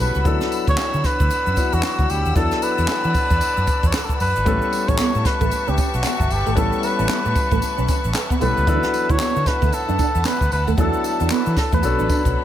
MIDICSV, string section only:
0, 0, Header, 1, 2, 480
1, 0, Start_track
1, 0, Tempo, 526316
1, 229, Time_signature, 4, 2, 24, 8
1, 11349, End_track
2, 0, Start_track
2, 0, Title_t, "String section"
2, 0, Program_c, 0, 48
2, 0, Note_on_c, 0, 69, 89
2, 0, Note_on_c, 0, 81, 79
2, 0, Note_on_c, 0, 83, 82
2, 0, Note_on_c, 0, 85, 99
2, 193, Note_off_c, 0, 69, 0
2, 193, Note_off_c, 0, 81, 0
2, 194, Note_off_c, 0, 85, 0
2, 229, Note_on_c, 0, 62, 86
2, 231, Note_on_c, 0, 78, 79
2, 231, Note_on_c, 0, 88, 95
2, 2113, Note_off_c, 0, 83, 0
2, 2130, Note_off_c, 0, 62, 0
2, 2147, Note_on_c, 0, 81, 82
2, 2149, Note_on_c, 0, 74, 86
2, 4034, Note_off_c, 0, 78, 0
2, 4034, Note_off_c, 0, 88, 0
2, 4049, Note_off_c, 0, 81, 0
2, 4050, Note_off_c, 0, 74, 0
2, 4071, Note_on_c, 0, 71, 93
2, 4071, Note_on_c, 0, 76, 80
2, 4071, Note_on_c, 0, 81, 86
2, 4072, Note_on_c, 0, 85, 97
2, 7873, Note_off_c, 0, 76, 0
2, 7874, Note_off_c, 0, 81, 0
2, 7874, Note_off_c, 0, 85, 0
2, 7909, Note_on_c, 0, 76, 79
2, 7909, Note_on_c, 0, 78, 84
2, 7910, Note_on_c, 0, 81, 100
2, 9794, Note_off_c, 0, 71, 0
2, 9810, Note_off_c, 0, 76, 0
2, 9828, Note_on_c, 0, 69, 92
2, 9829, Note_on_c, 0, 76, 72
2, 10761, Note_off_c, 0, 78, 0
2, 10780, Note_off_c, 0, 76, 0
2, 10788, Note_on_c, 0, 73, 70
2, 10788, Note_on_c, 0, 83, 77
2, 11349, Note_off_c, 0, 69, 0
2, 11349, Note_off_c, 0, 73, 0
2, 11349, Note_off_c, 0, 81, 0
2, 11349, Note_off_c, 0, 83, 0
2, 11349, End_track
0, 0, End_of_file